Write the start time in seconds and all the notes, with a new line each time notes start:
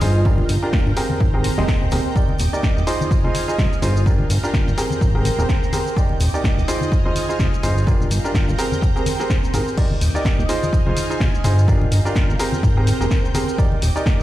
Already playing: F4 D#5 G#5 F6
0.01 G1 D#4 F4 G#4 C5, open hi-hat, tambourine, high conga
0.15 tambourine
0.25 D4 F4 G4 A#4 F5 A#5 G6, kick, tambourine
0.38 tambourine, high conga
0.49 G1 A#4, open hi-hat, tambourine
0.59 D4 F4 G4 A#4 G5, tambourine
0.73 kick, snare, tambourine, high conga
0.86 G1, tambourine
0.96 C4 G4 G#4 A#4 C5 A#5 G6, open hi-hat, tambourine
1.10 tambourine, high conga
1.20 G#1, kick, tambourine
1.34 C4 G4 G#4 A#4
1.44 open hi-hat, tambourine, high conga
1.58 D#1 C4 G4 G#4 D#5, snare, tambourine
1.68 kick, snare, tambourine
1.82 D#1
1.91 D#1 C4 G4 G#4 A#4, open hi-hat, tambourine, high conga
2.05 tambourine
2.15 D#4 G4 A#4 D5 D#5 D6, kick, tambourine, shaker
2.29 high conga
2.34 D6, tambourine
2.40 D#1, open hi-hat, shaker
2.53 D#4 G4 A#4 D5, tambourine, shaker
2.63 kick, snare, tambourine, high conga, shaker
2.77 D#1, shaker
2.87 D#4 F4 G#4 C5 G#5 F6, open hi-hat, tambourine, shaker
2.93 D#5
3.00 tambourine, high conga, shaker
3.11 kick, tambourine, shaker
3.24 F1 D#4 F4 G#4 C5
3.34 G#5, open hi-hat, tambourine, high conga, shaker
3.48 D#4 F4 G#4 C5, tambourine, shaker
3.58 C2, kick, snare, tambourine, shaker
3.73 shaker
3.82 G1 D#4 F4 G#4 C5, open hi-hat, tambourine, high conga, shaker
3.96 tambourine, shaker
4.06 D4 F4 G4 A#4 F5 A#5 G6, kick, tambourine, shaker
4.19 G5, high conga
4.30 G1 A#4, open hi-hat, tambourine, shaker
4.43 D4 F4 G4 A#4, tambourine, shaker
4.54 kick, snare, tambourine, high conga, shaker
4.67 G1, shaker
4.77 C4 G4 G#4 A#4 C5 A#5, open hi-hat, tambourine, shaker
4.90 tambourine, high conga, shaker
5.01 G#1, kick, tambourine, shaker
5.15 C4 G4 G#4 A#4
5.24 open hi-hat, tambourine, high conga, shaker
5.39 D#1 C4 G4 G#4 A#4, tambourine, shaker
5.49 kick, snare, shaker
5.63 shaker
5.72 C4 G4 G#4 A#4, open hi-hat, tambourine, high conga, shaker
5.86 tambourine, shaker
5.96 D#4 G4 A#4 D5 D#5 D6, kick, tambourine, shaker
6.09 high conga
6.20 D#1, open hi-hat, tambourine, shaker
6.33 D#4 G4 A#4 D5, tambourine, shaker
6.44 kick, snare, tambourine, high conga, shaker
6.58 D#1, shaker
6.68 D#4 F4 G#4 C5 G#5 F6, open hi-hat, tambourine, shaker
6.76 D#5
6.81 tambourine, high conga, shaker
6.91 kick, tambourine, shaker
7.05 F1 D#4 F4 G#4 C5 G#5
7.15 open hi-hat, tambourine, high conga, shaker
7.29 D#4 F4 G#4 C5, tambourine, shaker
7.39 C2, kick, snare, tambourine, shaker
7.54 shaker
7.63 G1 D#4 F4 G#4 C5, open hi-hat, tambourine, high conga, shaker
7.78 tambourine, shaker
7.87 D4 F4 G4 A#4 F5 A#5 G6, kick, tambourine, shaker
8.00 tambourine, high conga, shaker
8.11 G1, open hi-hat, tambourine, shaker
8.20 A#4 G5, tambourine
8.24 D4 F4 G4 A#4, shaker
8.34 kick, snare, tambourine, high conga, shaker
8.48 G1, tambourine, shaker
8.58 C4 G4 G#4 A#4 C5, open hi-hat, tambourine, shaker
8.72 tambourine, high conga, shaker
8.82 kick, tambourine, shaker
8.95 C4 G4 G#4 A#4, tambourine, shaker
9.06 open hi-hat, tambourine, high conga, shaker
9.20 C4 G4 G#4 A#4, snare, shaker
9.30 kick, snare, tambourine, shaker
9.43 tambourine, shaker
9.54 G#1 C4 G4 G#4 A#4, open hi-hat, tambourine, high conga, shaker
9.67 tambourine, shaker
9.77 D#4 G4 A#4 D5 D#5 D6 G6, kick, crash, tambourine, shaker
9.91 high conga
10.01 D#1, open hi-hat, tambourine, shaker
10.15 D#4 G4 A#4 D5, tambourine, shaker
10.25 kick, snare, tambourine, high conga, shaker
10.39 D#1, shaker
10.49 D#4 F4 G#4 C5 G#5 F6, open hi-hat, tambourine, shaker
10.62 tambourine, high conga, shaker
10.67 G#5
10.73 kick, tambourine, shaker
10.86 F1 D#4 F4 G#4 C5
10.96 D#5, open hi-hat, tambourine, high conga, shaker
11.10 D#4 F4 G#4 C5, tambourine, shaker
11.20 C2, kick, snare, tambourine, shaker
11.35 shaker
11.44 G1 D#4 F4 G#4 C5, open hi-hat, tambourine, high conga, shaker
11.59 tambourine, shaker
11.68 D4 F4 G4 A#4 F5 A#5 G6, kick, tambourine, shaker
11.81 high conga
11.91 G1, open hi-hat, tambourine, shaker
12.01 D4 F4 G4 A#4 G5
12.06 tambourine, shaker
12.15 kick, snare, tambourine, high conga, shaker
12.29 G1, shaker
12.39 C4 G4 G#4 A#4 C5, open hi-hat, tambourine, shaker
12.52 tambourine, high conga, shaker
12.63 G#1, kick, tambourine, shaker
12.77 C4 G4 G#4 A#4
12.87 open hi-hat, tambourine, high conga, shaker
13.01 D#1 C4 G4 G#4 A#4, tambourine, shaker
13.11 kick, snare, tambourine, shaker
13.25 shaker
13.34 C4 G4 G#4 A#4, open hi-hat, tambourine, high conga, shaker
13.49 tambourine, shaker
13.58 D#4 G4 A#4 D5 D#5 D6, kick, tambourine, shaker
13.71 D6, high conga
13.82 D#1, open hi-hat, tambourine, shaker
13.96 D#4 G4 A#4 D5, tambourine, shaker
14.06 kick, snare, tambourine, high conga, shaker
14.20 D#1